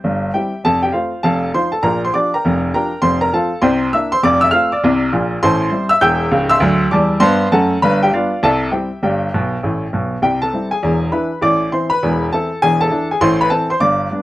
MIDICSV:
0, 0, Header, 1, 2, 480
1, 0, Start_track
1, 0, Tempo, 299551
1, 1024, Time_signature, 4, 2, 24, 8
1, 22786, End_track
2, 0, Start_track
2, 0, Title_t, "Upright piano"
2, 0, Program_c, 0, 0
2, 0, Note_on_c, 0, 67, 59
2, 0, Note_on_c, 0, 72, 69
2, 63, Note_on_c, 0, 31, 74
2, 73, Note_on_c, 0, 43, 71
2, 320, Note_off_c, 0, 72, 0
2, 472, Note_off_c, 0, 31, 0
2, 477, Note_off_c, 0, 43, 0
2, 482, Note_off_c, 0, 67, 0
2, 542, Note_on_c, 0, 79, 76
2, 545, Note_on_c, 0, 55, 43
2, 548, Note_on_c, 0, 64, 48
2, 556, Note_on_c, 0, 60, 39
2, 567, Note_on_c, 0, 67, 59
2, 568, Note_on_c, 0, 76, 55
2, 809, Note_off_c, 0, 55, 0
2, 811, Note_off_c, 0, 64, 0
2, 817, Note_off_c, 0, 60, 0
2, 951, Note_off_c, 0, 79, 0
2, 1003, Note_off_c, 0, 67, 0
2, 1003, Note_off_c, 0, 76, 0
2, 1026, Note_on_c, 0, 29, 64
2, 1037, Note_on_c, 0, 81, 108
2, 1042, Note_on_c, 0, 41, 90
2, 1053, Note_on_c, 0, 69, 73
2, 1297, Note_off_c, 0, 81, 0
2, 1322, Note_on_c, 0, 79, 83
2, 1330, Note_off_c, 0, 69, 0
2, 1339, Note_on_c, 0, 67, 70
2, 1433, Note_off_c, 0, 29, 0
2, 1442, Note_off_c, 0, 41, 0
2, 1470, Note_off_c, 0, 79, 0
2, 1479, Note_on_c, 0, 77, 74
2, 1494, Note_off_c, 0, 67, 0
2, 1494, Note_on_c, 0, 60, 42
2, 1495, Note_on_c, 0, 57, 44
2, 1498, Note_on_c, 0, 65, 60
2, 1500, Note_on_c, 0, 72, 61
2, 1761, Note_off_c, 0, 57, 0
2, 1761, Note_off_c, 0, 60, 0
2, 1897, Note_off_c, 0, 77, 0
2, 1947, Note_off_c, 0, 65, 0
2, 1948, Note_off_c, 0, 72, 0
2, 1973, Note_on_c, 0, 81, 103
2, 1984, Note_on_c, 0, 41, 87
2, 1985, Note_on_c, 0, 29, 83
2, 1988, Note_on_c, 0, 77, 77
2, 2001, Note_on_c, 0, 69, 74
2, 2385, Note_off_c, 0, 81, 0
2, 2391, Note_off_c, 0, 41, 0
2, 2392, Note_off_c, 0, 29, 0
2, 2432, Note_off_c, 0, 77, 0
2, 2439, Note_off_c, 0, 69, 0
2, 2471, Note_on_c, 0, 63, 47
2, 2473, Note_on_c, 0, 53, 54
2, 2474, Note_on_c, 0, 84, 92
2, 2478, Note_on_c, 0, 72, 78
2, 2483, Note_on_c, 0, 65, 60
2, 2733, Note_off_c, 0, 63, 0
2, 2734, Note_off_c, 0, 53, 0
2, 2734, Note_off_c, 0, 84, 0
2, 2741, Note_off_c, 0, 65, 0
2, 2754, Note_on_c, 0, 81, 85
2, 2761, Note_off_c, 0, 72, 0
2, 2774, Note_on_c, 0, 69, 62
2, 2905, Note_off_c, 0, 81, 0
2, 2928, Note_on_c, 0, 82, 94
2, 2929, Note_on_c, 0, 34, 78
2, 2930, Note_off_c, 0, 69, 0
2, 2932, Note_on_c, 0, 46, 89
2, 2952, Note_on_c, 0, 70, 75
2, 3199, Note_off_c, 0, 82, 0
2, 3238, Note_off_c, 0, 70, 0
2, 3278, Note_on_c, 0, 84, 87
2, 3300, Note_on_c, 0, 72, 65
2, 3342, Note_off_c, 0, 34, 0
2, 3344, Note_off_c, 0, 46, 0
2, 3410, Note_off_c, 0, 84, 0
2, 3426, Note_on_c, 0, 86, 93
2, 3432, Note_on_c, 0, 53, 48
2, 3434, Note_off_c, 0, 72, 0
2, 3438, Note_on_c, 0, 62, 52
2, 3442, Note_on_c, 0, 67, 43
2, 3446, Note_on_c, 0, 74, 77
2, 3689, Note_off_c, 0, 86, 0
2, 3692, Note_off_c, 0, 53, 0
2, 3697, Note_off_c, 0, 62, 0
2, 3700, Note_off_c, 0, 67, 0
2, 3725, Note_off_c, 0, 74, 0
2, 3751, Note_on_c, 0, 82, 83
2, 3767, Note_on_c, 0, 79, 53
2, 3769, Note_on_c, 0, 70, 52
2, 3923, Note_on_c, 0, 29, 91
2, 3932, Note_on_c, 0, 41, 85
2, 4150, Note_off_c, 0, 82, 0
2, 4197, Note_off_c, 0, 79, 0
2, 4198, Note_off_c, 0, 70, 0
2, 4320, Note_off_c, 0, 29, 0
2, 4326, Note_off_c, 0, 41, 0
2, 4386, Note_on_c, 0, 62, 52
2, 4393, Note_on_c, 0, 53, 45
2, 4395, Note_on_c, 0, 82, 84
2, 4400, Note_on_c, 0, 67, 50
2, 4409, Note_on_c, 0, 79, 65
2, 4415, Note_on_c, 0, 70, 64
2, 4648, Note_off_c, 0, 62, 0
2, 4653, Note_off_c, 0, 53, 0
2, 4658, Note_off_c, 0, 67, 0
2, 4795, Note_off_c, 0, 82, 0
2, 4833, Note_on_c, 0, 29, 79
2, 4835, Note_on_c, 0, 84, 108
2, 4841, Note_off_c, 0, 79, 0
2, 4843, Note_on_c, 0, 41, 89
2, 4844, Note_off_c, 0, 70, 0
2, 4852, Note_on_c, 0, 72, 72
2, 5110, Note_off_c, 0, 84, 0
2, 5145, Note_off_c, 0, 72, 0
2, 5145, Note_on_c, 0, 82, 91
2, 5156, Note_on_c, 0, 70, 78
2, 5251, Note_off_c, 0, 29, 0
2, 5257, Note_off_c, 0, 41, 0
2, 5298, Note_off_c, 0, 82, 0
2, 5318, Note_off_c, 0, 70, 0
2, 5341, Note_on_c, 0, 53, 52
2, 5345, Note_on_c, 0, 81, 87
2, 5350, Note_on_c, 0, 77, 62
2, 5356, Note_on_c, 0, 60, 53
2, 5357, Note_on_c, 0, 65, 57
2, 5366, Note_on_c, 0, 69, 66
2, 5603, Note_off_c, 0, 53, 0
2, 5614, Note_off_c, 0, 60, 0
2, 5615, Note_off_c, 0, 65, 0
2, 5749, Note_off_c, 0, 81, 0
2, 5789, Note_off_c, 0, 77, 0
2, 5793, Note_on_c, 0, 84, 99
2, 5798, Note_off_c, 0, 69, 0
2, 5801, Note_on_c, 0, 36, 99
2, 5809, Note_on_c, 0, 79, 74
2, 5812, Note_on_c, 0, 48, 93
2, 5819, Note_on_c, 0, 72, 93
2, 6210, Note_off_c, 0, 84, 0
2, 6214, Note_off_c, 0, 36, 0
2, 6221, Note_off_c, 0, 48, 0
2, 6257, Note_off_c, 0, 79, 0
2, 6263, Note_off_c, 0, 72, 0
2, 6294, Note_on_c, 0, 58, 52
2, 6299, Note_on_c, 0, 88, 98
2, 6302, Note_on_c, 0, 62, 56
2, 6319, Note_on_c, 0, 64, 54
2, 6323, Note_on_c, 0, 76, 84
2, 6557, Note_off_c, 0, 58, 0
2, 6562, Note_off_c, 0, 88, 0
2, 6564, Note_off_c, 0, 62, 0
2, 6576, Note_off_c, 0, 64, 0
2, 6600, Note_off_c, 0, 76, 0
2, 6602, Note_on_c, 0, 84, 112
2, 6624, Note_on_c, 0, 72, 70
2, 6746, Note_off_c, 0, 84, 0
2, 6771, Note_off_c, 0, 72, 0
2, 6780, Note_on_c, 0, 41, 101
2, 6784, Note_on_c, 0, 29, 88
2, 6786, Note_on_c, 0, 86, 111
2, 6808, Note_on_c, 0, 74, 96
2, 7046, Note_off_c, 0, 86, 0
2, 7067, Note_on_c, 0, 88, 120
2, 7082, Note_off_c, 0, 74, 0
2, 7105, Note_on_c, 0, 76, 89
2, 7184, Note_off_c, 0, 41, 0
2, 7187, Note_off_c, 0, 29, 0
2, 7217, Note_off_c, 0, 88, 0
2, 7226, Note_on_c, 0, 89, 118
2, 7241, Note_on_c, 0, 57, 55
2, 7251, Note_off_c, 0, 76, 0
2, 7257, Note_on_c, 0, 77, 88
2, 7259, Note_on_c, 0, 60, 52
2, 7259, Note_on_c, 0, 65, 59
2, 7502, Note_off_c, 0, 89, 0
2, 7508, Note_off_c, 0, 57, 0
2, 7521, Note_off_c, 0, 60, 0
2, 7521, Note_off_c, 0, 65, 0
2, 7545, Note_off_c, 0, 77, 0
2, 7566, Note_on_c, 0, 86, 82
2, 7580, Note_on_c, 0, 74, 80
2, 7746, Note_on_c, 0, 48, 105
2, 7759, Note_on_c, 0, 36, 104
2, 7972, Note_off_c, 0, 86, 0
2, 8018, Note_off_c, 0, 74, 0
2, 8147, Note_off_c, 0, 48, 0
2, 8154, Note_off_c, 0, 36, 0
2, 8215, Note_on_c, 0, 34, 88
2, 8216, Note_on_c, 0, 46, 84
2, 8596, Note_off_c, 0, 34, 0
2, 8597, Note_off_c, 0, 46, 0
2, 8695, Note_on_c, 0, 84, 119
2, 8697, Note_on_c, 0, 45, 101
2, 8703, Note_on_c, 0, 33, 91
2, 8720, Note_on_c, 0, 72, 99
2, 8725, Note_on_c, 0, 81, 75
2, 9101, Note_off_c, 0, 45, 0
2, 9105, Note_off_c, 0, 33, 0
2, 9151, Note_on_c, 0, 55, 59
2, 9158, Note_on_c, 0, 60, 50
2, 9170, Note_on_c, 0, 64, 53
2, 9365, Note_off_c, 0, 84, 0
2, 9420, Note_off_c, 0, 55, 0
2, 9425, Note_off_c, 0, 60, 0
2, 9433, Note_off_c, 0, 64, 0
2, 9441, Note_off_c, 0, 72, 0
2, 9443, Note_on_c, 0, 88, 123
2, 9444, Note_off_c, 0, 81, 0
2, 9467, Note_on_c, 0, 76, 90
2, 9601, Note_off_c, 0, 88, 0
2, 9629, Note_off_c, 0, 76, 0
2, 9634, Note_on_c, 0, 91, 124
2, 9636, Note_on_c, 0, 28, 109
2, 9639, Note_on_c, 0, 40, 100
2, 9645, Note_on_c, 0, 79, 108
2, 9651, Note_on_c, 0, 88, 101
2, 10048, Note_off_c, 0, 28, 0
2, 10050, Note_off_c, 0, 40, 0
2, 10116, Note_on_c, 0, 37, 109
2, 10119, Note_on_c, 0, 25, 90
2, 10312, Note_off_c, 0, 91, 0
2, 10382, Note_off_c, 0, 79, 0
2, 10383, Note_off_c, 0, 88, 0
2, 10407, Note_on_c, 0, 88, 127
2, 10425, Note_on_c, 0, 84, 98
2, 10426, Note_on_c, 0, 76, 96
2, 10504, Note_off_c, 0, 37, 0
2, 10505, Note_off_c, 0, 25, 0
2, 10582, Note_on_c, 0, 38, 104
2, 10612, Note_on_c, 0, 54, 102
2, 10970, Note_off_c, 0, 88, 0
2, 10975, Note_off_c, 0, 38, 0
2, 10993, Note_off_c, 0, 54, 0
2, 11033, Note_off_c, 0, 84, 0
2, 11034, Note_off_c, 0, 76, 0
2, 11075, Note_on_c, 0, 86, 92
2, 11080, Note_on_c, 0, 40, 97
2, 11089, Note_on_c, 0, 81, 77
2, 11101, Note_on_c, 0, 74, 69
2, 11103, Note_on_c, 0, 55, 94
2, 11466, Note_off_c, 0, 40, 0
2, 11480, Note_off_c, 0, 55, 0
2, 11487, Note_off_c, 0, 86, 0
2, 11528, Note_off_c, 0, 81, 0
2, 11538, Note_on_c, 0, 84, 127
2, 11540, Note_off_c, 0, 74, 0
2, 11540, Note_on_c, 0, 43, 112
2, 11552, Note_on_c, 0, 81, 89
2, 11565, Note_on_c, 0, 72, 86
2, 11574, Note_on_c, 0, 59, 109
2, 11934, Note_off_c, 0, 43, 0
2, 11954, Note_off_c, 0, 59, 0
2, 11957, Note_off_c, 0, 84, 0
2, 12004, Note_off_c, 0, 81, 0
2, 12011, Note_off_c, 0, 72, 0
2, 12050, Note_on_c, 0, 81, 106
2, 12053, Note_on_c, 0, 42, 101
2, 12064, Note_on_c, 0, 69, 71
2, 12065, Note_on_c, 0, 78, 81
2, 12071, Note_on_c, 0, 57, 81
2, 12434, Note_off_c, 0, 42, 0
2, 12445, Note_off_c, 0, 57, 0
2, 12456, Note_off_c, 0, 81, 0
2, 12501, Note_off_c, 0, 69, 0
2, 12502, Note_off_c, 0, 78, 0
2, 12535, Note_on_c, 0, 83, 123
2, 12538, Note_on_c, 0, 31, 93
2, 12556, Note_on_c, 0, 43, 96
2, 12568, Note_on_c, 0, 71, 98
2, 12796, Note_off_c, 0, 83, 0
2, 12838, Note_off_c, 0, 71, 0
2, 12862, Note_on_c, 0, 79, 105
2, 12881, Note_on_c, 0, 67, 89
2, 12940, Note_off_c, 0, 31, 0
2, 12950, Note_off_c, 0, 43, 0
2, 12994, Note_off_c, 0, 79, 0
2, 13016, Note_off_c, 0, 67, 0
2, 13027, Note_on_c, 0, 55, 50
2, 13032, Note_on_c, 0, 77, 83
2, 13037, Note_on_c, 0, 74, 72
2, 13039, Note_on_c, 0, 62, 54
2, 13042, Note_on_c, 0, 59, 64
2, 13057, Note_on_c, 0, 65, 72
2, 13285, Note_off_c, 0, 55, 0
2, 13294, Note_off_c, 0, 62, 0
2, 13296, Note_off_c, 0, 59, 0
2, 13428, Note_off_c, 0, 77, 0
2, 13468, Note_off_c, 0, 74, 0
2, 13479, Note_off_c, 0, 65, 0
2, 13507, Note_on_c, 0, 36, 102
2, 13517, Note_on_c, 0, 81, 116
2, 13522, Note_on_c, 0, 48, 96
2, 13529, Note_on_c, 0, 76, 86
2, 13536, Note_on_c, 0, 69, 87
2, 13905, Note_off_c, 0, 36, 0
2, 13911, Note_off_c, 0, 81, 0
2, 13914, Note_off_c, 0, 48, 0
2, 13951, Note_off_c, 0, 76, 0
2, 13958, Note_off_c, 0, 69, 0
2, 13963, Note_on_c, 0, 79, 67
2, 13971, Note_on_c, 0, 55, 47
2, 13972, Note_on_c, 0, 60, 60
2, 13975, Note_on_c, 0, 76, 54
2, 13988, Note_on_c, 0, 67, 52
2, 13989, Note_on_c, 0, 64, 59
2, 14233, Note_off_c, 0, 55, 0
2, 14234, Note_off_c, 0, 60, 0
2, 14246, Note_off_c, 0, 64, 0
2, 14372, Note_off_c, 0, 79, 0
2, 14417, Note_off_c, 0, 76, 0
2, 14424, Note_off_c, 0, 67, 0
2, 14464, Note_on_c, 0, 31, 84
2, 14469, Note_on_c, 0, 43, 85
2, 14471, Note_on_c, 0, 79, 80
2, 14480, Note_on_c, 0, 67, 62
2, 14484, Note_on_c, 0, 74, 57
2, 14864, Note_off_c, 0, 31, 0
2, 14867, Note_off_c, 0, 43, 0
2, 14968, Note_on_c, 0, 47, 82
2, 14971, Note_on_c, 0, 35, 72
2, 15312, Note_off_c, 0, 47, 0
2, 15314, Note_off_c, 0, 35, 0
2, 15436, Note_on_c, 0, 33, 73
2, 15444, Note_on_c, 0, 45, 82
2, 15785, Note_off_c, 0, 33, 0
2, 15790, Note_off_c, 0, 45, 0
2, 15914, Note_on_c, 0, 35, 66
2, 15924, Note_on_c, 0, 47, 69
2, 15950, Note_off_c, 0, 79, 0
2, 16152, Note_off_c, 0, 67, 0
2, 16154, Note_off_c, 0, 74, 0
2, 16264, Note_off_c, 0, 35, 0
2, 16270, Note_off_c, 0, 47, 0
2, 16378, Note_on_c, 0, 48, 70
2, 16381, Note_on_c, 0, 36, 73
2, 16387, Note_on_c, 0, 79, 96
2, 16389, Note_on_c, 0, 67, 74
2, 16644, Note_off_c, 0, 79, 0
2, 16669, Note_off_c, 0, 67, 0
2, 16691, Note_on_c, 0, 81, 100
2, 16714, Note_on_c, 0, 69, 61
2, 16782, Note_off_c, 0, 48, 0
2, 16783, Note_off_c, 0, 36, 0
2, 16876, Note_on_c, 0, 60, 50
2, 16881, Note_on_c, 0, 55, 43
2, 16901, Note_on_c, 0, 64, 49
2, 17095, Note_off_c, 0, 81, 0
2, 17133, Note_off_c, 0, 60, 0
2, 17136, Note_off_c, 0, 55, 0
2, 17145, Note_off_c, 0, 69, 0
2, 17151, Note_off_c, 0, 64, 0
2, 17164, Note_on_c, 0, 80, 93
2, 17192, Note_on_c, 0, 68, 60
2, 17353, Note_on_c, 0, 40, 98
2, 17362, Note_on_c, 0, 28, 79
2, 17714, Note_off_c, 0, 80, 0
2, 17751, Note_off_c, 0, 40, 0
2, 17756, Note_off_c, 0, 28, 0
2, 17781, Note_off_c, 0, 68, 0
2, 17819, Note_on_c, 0, 83, 81
2, 17823, Note_on_c, 0, 52, 56
2, 17826, Note_on_c, 0, 64, 64
2, 17826, Note_on_c, 0, 71, 74
2, 17829, Note_on_c, 0, 62, 49
2, 18084, Note_off_c, 0, 52, 0
2, 18086, Note_off_c, 0, 64, 0
2, 18088, Note_off_c, 0, 62, 0
2, 18224, Note_off_c, 0, 83, 0
2, 18265, Note_off_c, 0, 71, 0
2, 18291, Note_on_c, 0, 45, 81
2, 18304, Note_on_c, 0, 33, 75
2, 18305, Note_on_c, 0, 86, 96
2, 18306, Note_on_c, 0, 74, 90
2, 18699, Note_off_c, 0, 45, 0
2, 18707, Note_off_c, 0, 33, 0
2, 18708, Note_off_c, 0, 86, 0
2, 18746, Note_off_c, 0, 74, 0
2, 18784, Note_on_c, 0, 84, 88
2, 18786, Note_on_c, 0, 52, 51
2, 18795, Note_on_c, 0, 60, 47
2, 18798, Note_on_c, 0, 64, 48
2, 18810, Note_on_c, 0, 72, 63
2, 19045, Note_off_c, 0, 84, 0
2, 19047, Note_off_c, 0, 52, 0
2, 19053, Note_off_c, 0, 60, 0
2, 19055, Note_off_c, 0, 64, 0
2, 19064, Note_on_c, 0, 83, 109
2, 19083, Note_off_c, 0, 72, 0
2, 19086, Note_on_c, 0, 71, 81
2, 19274, Note_on_c, 0, 40, 90
2, 19277, Note_on_c, 0, 28, 91
2, 19624, Note_off_c, 0, 83, 0
2, 19674, Note_off_c, 0, 40, 0
2, 19676, Note_off_c, 0, 28, 0
2, 19689, Note_off_c, 0, 71, 0
2, 19750, Note_on_c, 0, 81, 95
2, 19755, Note_on_c, 0, 60, 51
2, 19758, Note_on_c, 0, 52, 52
2, 19772, Note_on_c, 0, 64, 64
2, 19776, Note_on_c, 0, 69, 80
2, 20014, Note_off_c, 0, 60, 0
2, 20016, Note_off_c, 0, 52, 0
2, 20026, Note_off_c, 0, 64, 0
2, 20152, Note_off_c, 0, 81, 0
2, 20204, Note_off_c, 0, 69, 0
2, 20226, Note_on_c, 0, 80, 126
2, 20228, Note_on_c, 0, 28, 84
2, 20229, Note_on_c, 0, 40, 92
2, 20234, Note_on_c, 0, 68, 80
2, 20487, Note_off_c, 0, 80, 0
2, 20516, Note_off_c, 0, 68, 0
2, 20521, Note_on_c, 0, 81, 110
2, 20540, Note_on_c, 0, 69, 86
2, 20631, Note_off_c, 0, 28, 0
2, 20632, Note_off_c, 0, 40, 0
2, 20687, Note_on_c, 0, 52, 48
2, 20688, Note_on_c, 0, 64, 55
2, 20690, Note_on_c, 0, 62, 62
2, 20933, Note_off_c, 0, 81, 0
2, 20954, Note_off_c, 0, 52, 0
2, 20955, Note_off_c, 0, 64, 0
2, 20956, Note_off_c, 0, 62, 0
2, 20982, Note_off_c, 0, 69, 0
2, 21012, Note_on_c, 0, 80, 86
2, 21028, Note_on_c, 0, 68, 71
2, 21154, Note_off_c, 0, 80, 0
2, 21167, Note_on_c, 0, 45, 108
2, 21170, Note_on_c, 0, 84, 122
2, 21175, Note_off_c, 0, 68, 0
2, 21179, Note_on_c, 0, 33, 98
2, 21196, Note_on_c, 0, 72, 85
2, 21439, Note_off_c, 0, 84, 0
2, 21478, Note_off_c, 0, 72, 0
2, 21485, Note_on_c, 0, 83, 114
2, 21504, Note_on_c, 0, 71, 86
2, 21580, Note_off_c, 0, 45, 0
2, 21587, Note_off_c, 0, 33, 0
2, 21630, Note_off_c, 0, 83, 0
2, 21633, Note_on_c, 0, 81, 102
2, 21644, Note_on_c, 0, 64, 50
2, 21646, Note_on_c, 0, 60, 65
2, 21649, Note_on_c, 0, 52, 61
2, 21654, Note_off_c, 0, 71, 0
2, 21656, Note_on_c, 0, 69, 65
2, 21910, Note_off_c, 0, 81, 0
2, 21912, Note_off_c, 0, 64, 0
2, 21914, Note_off_c, 0, 60, 0
2, 21916, Note_off_c, 0, 52, 0
2, 21948, Note_off_c, 0, 69, 0
2, 21955, Note_on_c, 0, 84, 90
2, 21972, Note_on_c, 0, 72, 86
2, 22105, Note_off_c, 0, 84, 0
2, 22114, Note_on_c, 0, 31, 80
2, 22119, Note_on_c, 0, 86, 108
2, 22128, Note_off_c, 0, 72, 0
2, 22128, Note_on_c, 0, 43, 78
2, 22129, Note_on_c, 0, 74, 75
2, 22534, Note_off_c, 0, 31, 0
2, 22542, Note_off_c, 0, 43, 0
2, 22606, Note_on_c, 0, 55, 43
2, 22632, Note_on_c, 0, 59, 46
2, 22635, Note_on_c, 0, 62, 55
2, 22786, Note_off_c, 0, 55, 0
2, 22786, Note_off_c, 0, 59, 0
2, 22786, Note_off_c, 0, 62, 0
2, 22786, Note_off_c, 0, 74, 0
2, 22786, Note_off_c, 0, 86, 0
2, 22786, End_track
0, 0, End_of_file